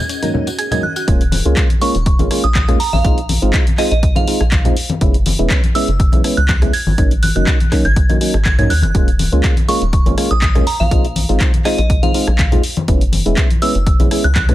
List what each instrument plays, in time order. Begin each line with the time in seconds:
Already playing: ambient pad C#4 G#4 A#4 F#5, string machine D#5
0.09 synth arpeggio sound C#4, closed hi-hat, tambourine
0.22 synth stab G#2 F#3 A#3 C#4 D#4, synth arpeggio sound A#4, closed hi-hat, tambourine, high conga
0.34 synth stab G#2 F#3 A#3 C#4 D#4, low conga
0.47 synth arpeggio sound F#4, closed hi-hat, tambourine
0.58 synth arpeggio sound G#4, synth bell G#6, closed hi-hat, tambourine
0.71 synth stab G#2 F#3 A#3 C#4 D#4, synth arpeggio sound D#4, synth bell G#6, closed hi-hat, tambourine, low conga
0.83 synth bell F#6, high conga
0.96 synth arpeggio sound F#4, synth bell F#6, closed hi-hat, tambourine
1.07 analog synth bass D#1, synth stab G#3 A#3 C#4 F4, kick, closed hi-hat
1.21 closed hi-hat
1.32 open hi-hat, high conga
1.45 analog synth bass C#2, synth stab G#3 A#3 C#4 F4, closed hi-hat
1.57 kick, clap, closed hi-hat
1.70 closed hi-hat, high conga
1.81 synth stab G#3 A#3 C#4 F4, synth bell C#6, open hi-hat
1.95 analog synth bass D#1, closed hi-hat
2.06 kick, closed hi-hat
2.19 analog synth bass G#1, synth stab G#3 A#3 C#4 F4, closed hi-hat, high conga
2.30 synth stab G#3 A#3 C#4 F4, cross-stick, open hi-hat
2.44 analog synth bass A#1, synth bell D#6, closed hi-hat
2.55 synth bell D#6, kick, clap, closed hi-hat, high conga
2.68 synth stab G#3 A#3 C#4 F4, cross-stick, closed hi-hat, low conga
2.80 synth bell A#5, open hi-hat
2.93 analog synth bass A#1, synth bell F5, high conga
3.04 analog synth bass A#1, synth stab G#3 C4 D#4 F4, kick, closed hi-hat
3.18 closed hi-hat
3.29 open hi-hat, high conga
3.42 analog synth bass G#1, synth stab G#3 C4 D#4 F4, closed hi-hat
3.54 kick, clap, closed hi-hat
3.67 closed hi-hat, high conga
3.78 synth stab G#3 C4 D#4 F4, synth bell D#5, cross-stick, clap, open hi-hat
3.91 analog synth bass A#1, synth bell D#5, closed hi-hat
4.03 kick, closed hi-hat
4.16 synth stab G#3 C4 D#4 F4, synth bell F5, closed hi-hat, high conga
4.27 synth stab G#3 C4 D#4 F4, open hi-hat
4.41 analog synth bass A#1, cross-stick, closed hi-hat
4.52 kick, clap, closed hi-hat, high conga
4.65 synth stab G#3 C4 D#4 F4, closed hi-hat, low conga
4.77 open hi-hat
4.89 closed hi-hat, high conga
5.01 analog synth bass F#1, synth stab G#3 B3 C#4 E4, kick, closed hi-hat
5.14 closed hi-hat
5.26 open hi-hat, high conga
5.39 analog synth bass E1, synth stab G#3 B3 C#4 E4, closed hi-hat
5.50 kick, clap, closed hi-hat
5.63 closed hi-hat, high conga
5.75 synth stab G#3 B3 C#4 E4, synth bell E6, open hi-hat
5.88 analog synth bass F#1, closed hi-hat
6.00 kick, closed hi-hat
6.12 analog synth bass B1, synth stab G#3 B3 C#4 E4, closed hi-hat, high conga
6.24 synth stab G#3 B3 C#4 E4, cross-stick, open hi-hat
6.37 analog synth bass C#2, synth bell F#6, closed hi-hat
6.49 synth bell F#6, kick, clap, closed hi-hat, high conga
6.62 synth stab G#3 B3 C#4 E4, cross-stick, closed hi-hat, low conga
6.73 synth bell G#6, open hi-hat
6.87 analog synth bass G#1, high conga
6.98 analog synth bass G#1, synth stab F#3 A#3 C#4 D#4, kick, closed hi-hat
7.11 closed hi-hat
7.23 synth bell F#6, open hi-hat, high conga
7.35 analog synth bass F#1, synth stab F#3 A#3 C#4 D#4, synth bell F#6, closed hi-hat
7.47 kick, clap, closed hi-hat
7.60 closed hi-hat, high conga
7.72 synth stab F#3 A#3 C#4 D#4, kick, cross-stick, clap, open hi-hat
7.85 analog synth bass G#1, synth bell G#6, closed hi-hat
7.96 kick, closed hi-hat
8.09 synth stab F#3 A#3 C#4 D#4, closed hi-hat, high conga
8.21 synth stab F#3 A#3 C#4 D#4, open hi-hat
8.34 analog synth bass G#1, cross-stick
8.45 synth bell G#6, kick, clap, closed hi-hat, high conga
8.58 analog synth bass G#2, synth stab F#3 A#3 C#4 D#4, synth bell G#6, closed hi-hat, low conga
8.70 analog synth bass D#2, synth bell F#6, open hi-hat
8.82 analog synth bass F#1, synth bell F#6, closed hi-hat, high conga
8.94 analog synth bass D#1, synth stab G#3 A#3 C#4 F4, kick, closed hi-hat
9.08 closed hi-hat
9.19 open hi-hat, high conga
9.32 analog synth bass C#2, synth stab G#3 A#3 C#4 F4, closed hi-hat
9.44 kick, clap, closed hi-hat
9.57 closed hi-hat, high conga
9.68 synth stab G#3 A#3 C#4 F4, synth bell C#6, open hi-hat
9.82 analog synth bass D#1, closed hi-hat
9.93 kick, closed hi-hat
10.06 analog synth bass G#1, synth stab G#3 A#3 C#4 F4, closed hi-hat, high conga
10.17 synth stab G#3 A#3 C#4 F4, cross-stick, open hi-hat
10.31 analog synth bass A#1, synth bell D#6, closed hi-hat
10.42 synth bell D#6, kick, clap, closed hi-hat, high conga
10.55 synth stab G#3 A#3 C#4 F4, cross-stick, closed hi-hat, low conga
10.67 synth bell A#5, open hi-hat
10.80 analog synth bass A#1, synth bell F5, high conga
10.91 analog synth bass A#1, synth stab G#3 C4 D#4 F4, kick, closed hi-hat
11.05 closed hi-hat
11.16 open hi-hat, high conga
11.29 analog synth bass G#1, synth stab G#3 C4 D#4 F4, closed hi-hat
11.41 kick, clap, closed hi-hat
11.54 closed hi-hat, high conga
11.65 synth stab G#3 C4 D#4 F4, synth bell D#5, cross-stick, clap, open hi-hat
11.78 analog synth bass A#1, synth bell D#5, closed hi-hat
11.90 kick, closed hi-hat
12.03 synth stab G#3 C4 D#4 F4, synth bell F5, closed hi-hat, high conga
12.14 synth stab G#3 C4 D#4 F4, open hi-hat
12.27 analog synth bass A#1, cross-stick, closed hi-hat
12.39 kick, clap, closed hi-hat, high conga
12.52 synth stab G#3 C4 D#4 F4, closed hi-hat, low conga
12.63 open hi-hat
12.77 closed hi-hat, high conga
12.88 analog synth bass F#1, synth stab G#3 B3 C#4 E4, kick, closed hi-hat
13.01 closed hi-hat
13.12 open hi-hat, high conga
13.26 analog synth bass E1, synth stab G#3 B3 C#4 E4, closed hi-hat
13.37 kick, clap, closed hi-hat
13.51 closed hi-hat, high conga
13.62 synth stab G#3 B3 C#4 E4, synth bell E6, open hi-hat
13.75 analog synth bass F#1, closed hi-hat
13.87 kick, closed hi-hat
13.99 analog synth bass B1, synth stab G#3 B3 C#4 E4, closed hi-hat, high conga
14.11 synth stab G#3 B3 C#4 E4, cross-stick, open hi-hat
14.24 analog synth bass C#2, synth bell F#6, closed hi-hat
14.36 synth bell F#6, kick, clap, closed hi-hat, high conga
14.48 synth stab G#3 B3 C#4 E4, cross-stick, closed hi-hat, low conga